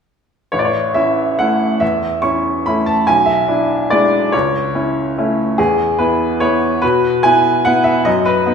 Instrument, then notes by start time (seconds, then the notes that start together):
upright piano
0.52 A1 C#5
0.59 D5
0.65 C#5
0.94 C#4 E4 E5
1.39 A3 C#4 E4 F#5
1.80 E2 E5
2.22 C#4 E4 C#6
2.66 A3 C#4 E4 B5
2.86 A5
3.07 B1 G#5
3.26 E5
3.47 D4 E4
3.90 G#3 D4 E4 D5
4.32 C#2 C#5
4.75 C#4 E4
5.18 A3 C#4 E4
5.58 E2 G#4
5.98 B3 E4 B4
6.40 B3 E4 C#5
6.82 B2 B4
7.23 B3 E4 G#5
7.65 B3 E4 F#5
7.84 E5
8.05 F#2 D#5
8.25 B4
8.46 B3 D#4